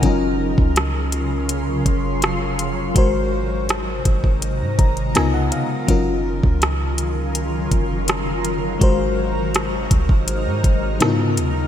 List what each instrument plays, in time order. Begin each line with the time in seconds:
Already playing: ambient pad C#3 A#4
0.02 808-style bass F#1, fm electric piano F#3 C#4 F4 A#4, ambient pad F#3 F4, kick, closed hi-hat
0.58 808-style bass C#2, kick
0.76 cross-stick, closed hi-hat
1.12 closed hi-hat
1.49 closed hi-hat
1.86 808-style bass F#1, kick, closed hi-hat
2.22 cross-stick, closed hi-hat
2.59 closed hi-hat
2.94 808-style bass G#1, ambient pad C3 G#3 D#4, fm electric piano G#3 F#4 A#4 C5, kick, closed hi-hat
3.69 cross-stick, closed hi-hat
4.05 808-style bass G#1, kick, closed hi-hat
4.24 808-style bass G#1, kick
4.42 closed hi-hat
4.61 808-style bass G#2
4.79 808-style bass G#1, fm electric piano A#5, kick, closed hi-hat
4.97 closed hi-hat
5.15 808-style bass C#2, ambient pad C#3 D#3, fm electric piano C#3 B3 D#4 F4 A#4 G#5, cross-stick, closed hi-hat
5.34 fm electric piano F#5
5.52 fm electric piano F5, closed hi-hat
5.87 808-style bass F#1, fm electric piano F#3 C#4 F4 A#4, ambient pad F#3 F4 A#4, kick, closed hi-hat
6.43 808-style bass C#2, kick
6.62 cross-stick, closed hi-hat
6.98 closed hi-hat
7.35 closed hi-hat
7.71 808-style bass F#1, kick, closed hi-hat
8.08 cross-stick, closed hi-hat
8.45 closed hi-hat
8.80 808-style bass G#1, ambient pad C3 G#3 D#4, fm electric piano G#3 F#4 A#4 C5, kick, closed hi-hat
9.55 cross-stick, closed hi-hat
9.91 808-style bass C2, kick, closed hi-hat
10.09 808-style bass G#1, kick
10.28 closed hi-hat
10.46 808-style bass G#2
10.64 808-style bass G#1, kick, closed hi-hat
11.00 808-style bass G#2, fm electric piano C#3 B3 D#4 E4 A#4, ambient pad C#3 D#3, cross-stick, closed hi-hat
11.08 fm electric piano F4
11.37 808-style bass D#2, closed hi-hat